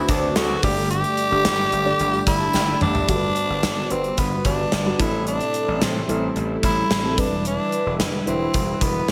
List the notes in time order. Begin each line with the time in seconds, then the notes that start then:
Already playing: D3 A3 C4 D4 E4 F#4 B4 C5
0.08 D2 F#3 D4 A4, kick, closed hi-hat, tambourine
0.35 D2 F#3 D4 F#4 A4, snare, closed hi-hat, tambourine
0.62 G1 G2 G3 A3 D4 G4 D5, kick, open hi-hat, tambourine
0.76 tambourine
0.90 G4, closed hi-hat, tambourine
1.04 closed hi-hat, tambourine
1.17 closed hi-hat, tambourine
1.31 G1 A3 D4 G4 D5, tambourine
1.45 G1, snare, closed hi-hat, tambourine
1.72 G1, closed hi-hat
1.85 A3 D4 G4 D5
1.99 G1, closed hi-hat, tambourine
2.14 tambourine
2.27 G1 E4 B5, kick, closed hi-hat, tambourine
2.40 A5, tambourine
2.53 G1 G5, snare, tambourine
2.68 E5
2.81 G1 D4 D5, mid tom, tambourine
2.95 floor tom, tambourine
3.08 G1 G2 D3 G3 B3 D4 F#4 A4, kick, closed hi-hat
3.16 B4
3.36 closed hi-hat
3.50 G1
3.63 G1, snare, closed hi-hat
3.90 G1 G3 C4 D4 F#4 B4, closed hi-hat
4.04 closed hi-hat
4.17 G1 B3, kick, closed hi-hat
4.45 G1 D4, kick, closed hi-hat
4.72 G1, snare, closed hi-hat
4.85 G3 D4 F#4 B4
4.99 A1 A2 C3 G3 A3 C4 E4 A4, kick, closed hi-hat
5.27 D4, closed hi-hat
5.40 closed hi-hat
5.54 closed hi-hat
5.68 A1
5.82 A1 C4, snare, closed hi-hat
6.08 A1 G3 C4 E4 A4, closed hi-hat
6.36 A1, closed hi-hat
6.63 A1 E4, kick, closed hi-hat
6.90 A1, snare, closed hi-hat
7.03 G3 C4 E4 A4
7.17 E1 D3 E3 G3 D4 E4 B4, kick, closed hi-hat
7.45 D4, closed hi-hat
7.72 closed hi-hat
7.86 E1
8.00 E1, snare, closed hi-hat
8.26 E1 G3 C4 D4 E4 B4, closed hi-hat
8.54 E1, kick, closed hi-hat
8.81 E1 B3, kick, closed hi-hat
9.08 E1, snare, closed hi-hat